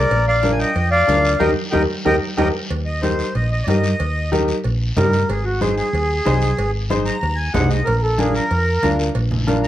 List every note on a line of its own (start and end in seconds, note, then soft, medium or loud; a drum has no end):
0.00 0.26 A#4 medium
0.00 0.26 D5 loud
0.11 0.63 A#1 medium
0.11 cowbell loud
0.11 high conga soft
0.11 long guiro medium
0.28 0.51 D5 medium
0.28 0.51 F5 medium
0.43 0.66 D4 medium
0.43 0.66 F4 medium
0.43 0.66 A#4 medium
0.43 cowbell medium
0.43 high conga medium
0.43 short guiro medium
0.52 0.59 G#5 medium
0.59 0.90 D#5 medium
0.59 0.89 G5 loud
0.59 short guiro medium
0.76 1.02 F2 medium
0.76 cowbell medium
0.76 high conga soft
0.76 long guiro medium
0.91 1.37 D5 medium
0.91 1.42 F5 loud
1.07 1.34 D2 loud
1.07 1.31 D4 medium
1.07 1.31 F4 medium
1.07 1.31 A#4 medium
1.07 cowbell medium
1.07 high conga medium
1.07 short guiro medium
1.25 short guiro medium
1.39 1.53 D#2 loud
1.39 1.51 D#4 loud
1.39 1.51 G4 loud
1.39 1.50 A#4 loud
1.39 1.51 A#4 medium
1.39 1.51 D#5 loud
1.39 1.50 G5 loud
1.39 high conga loud
1.39 high timbale medium
1.39 long guiro loud
1.71 1.86 D#2 loud
1.71 1.83 D#4 medium
1.71 1.83 G4 medium
1.71 1.83 A#4 loud
1.71 1.83 A#4 medium
1.71 1.82 D#5 loud
1.71 1.82 G5 medium
1.71 high conga loud
1.71 high timbale medium
1.71 long guiro medium
2.05 2.18 D#2 medium
2.05 2.16 D#4 medium
2.05 2.16 G4 medium
2.05 2.16 A#4 medium
2.05 2.16 A#4 loud
2.05 2.16 D#5 loud
2.05 2.16 G5 loud
2.05 high conga medium
2.05 high timbale loud
2.05 long guiro loud
2.37 2.50 D#2 medium
2.37 2.48 D#4 loud
2.37 2.48 G4 loud
2.37 2.48 A#4 medium
2.37 2.48 D#5 medium
2.37 2.48 G5 loud
2.37 high conga loud
2.37 high timbale loud
2.37 long guiro medium
2.70 3.22 D#2 medium
2.70 cowbell loud
2.70 high conga soft
2.70 long guiro medium
2.86 3.02 D#5 medium
3.02 3.25 D#4 medium
3.02 3.26 G4 medium
3.02 3.26 A#4 medium
3.02 3.34 C5 medium
3.02 cowbell medium
3.02 high conga medium
3.02 short guiro medium
3.19 short guiro medium
3.35 3.61 A#1 medium
3.35 3.50 D#5 medium
3.35 cowbell medium
3.35 high conga soft
3.35 long guiro medium
3.51 3.67 D#5 medium
3.64 3.93 G2 medium
3.64 3.66 D5 medium
3.68 3.90 D#4 medium
3.68 3.90 G4 medium
3.68 3.91 A#4 medium
3.68 4.30 D#5 medium
3.68 cowbell medium
3.68 high conga medium
3.68 low timbale medium
3.68 short guiro medium
3.84 short guiro medium
4.00 4.52 D#2 medium
4.00 cowbell loud
4.00 high conga soft
4.00 long guiro medium
4.32 4.55 D#4 medium
4.32 4.55 G4 medium
4.32 4.55 A#4 loud
4.32 cowbell medium
4.32 high conga medium
4.32 short guiro medium
4.48 short guiro medium
4.64 4.91 A#1 medium
4.64 cowbell medium
4.64 high conga soft
4.64 long guiro medium
4.96 5.23 G2 loud
4.96 5.19 D#4 medium
4.96 5.20 G4 medium
4.96 5.19 A#4 medium
4.96 5.29 A#4 medium
4.96 cowbell medium
4.96 high conga medium
4.96 low conga medium
4.96 low timbale medium
4.96 short guiro medium
5.13 short guiro medium
5.29 5.81 G#1 loud
5.29 5.45 G#4 medium
5.29 cowbell loud
5.29 high conga soft
5.29 long guiro medium
5.45 5.60 F#4 medium
5.61 5.84 D#4 medium
5.61 5.84 G#4 medium
5.61 5.75 G#4 medium
5.61 5.84 C5 medium
5.61 cowbell medium
5.61 high conga medium
5.61 short guiro medium
5.77 6.71 G#4 loud
5.77 short guiro medium
5.93 6.19 D#2 medium
5.93 cowbell medium
5.93 high conga soft
5.93 long guiro medium
6.25 6.52 C2 loud
6.25 6.48 D#4 medium
6.25 6.48 G#4 medium
6.25 6.49 C5 loud
6.25 cowbell medium
6.25 high conga medium
6.25 low timbale medium
6.25 short guiro medium
6.41 short guiro medium
6.57 7.10 G#1 medium
6.57 cowbell loud
6.57 high conga soft
6.57 long guiro medium
6.90 7.13 D#4 medium
6.90 7.13 G#4 medium
6.90 7.13 C5 medium
6.90 cowbell medium
6.90 high conga medium
6.90 short guiro medium
7.06 7.37 A#5 loud
7.06 short guiro medium
7.21 7.48 D#2 loud
7.21 cowbell medium
7.21 high conga soft
7.21 long guiro medium
7.36 7.53 G#5 medium
7.53 7.81 C2 medium
7.53 7.77 D#4 medium
7.53 7.77 G#4 medium
7.53 7.77 C5 medium
7.53 7.70 F#5 medium
7.53 cowbell medium
7.53 high conga medium
7.53 low conga medium
7.53 low timbale medium
7.53 short guiro medium
7.69 7.86 D#5 medium
7.69 short guiro medium
7.85 8.39 A#1 medium
7.85 8.01 A#4 medium
7.85 cowbell loud
7.85 high conga soft
7.85 long guiro medium
8.02 8.18 A4 medium
8.18 8.41 D4 medium
8.18 8.41 F4 medium
8.18 8.34 G#4 medium
8.18 8.42 A#4 medium
8.18 cowbell medium
8.18 high conga medium
8.18 short guiro medium
8.34 8.97 A#4 loud
8.34 short guiro medium
8.51 8.77 F2 medium
8.51 cowbell medium
8.51 high conga soft
8.51 long guiro medium
8.83 9.09 D2 medium
8.83 9.06 D4 medium
8.83 9.06 F4 medium
8.83 9.06 A#4 medium
8.83 cowbell medium
8.83 high conga medium
8.83 short guiro medium
8.99 short guiro medium
9.15 9.67 A#1 loud
9.15 cowbell loud
9.15 high conga soft
9.15 long guiro medium
9.31 low conga medium
9.47 9.68 D4 medium
9.47 9.68 F4 medium
9.47 9.68 A#4 medium
9.47 cowbell medium
9.47 high conga medium
9.47 short guiro medium
9.63 9.68 A#5 loud
9.63 short guiro medium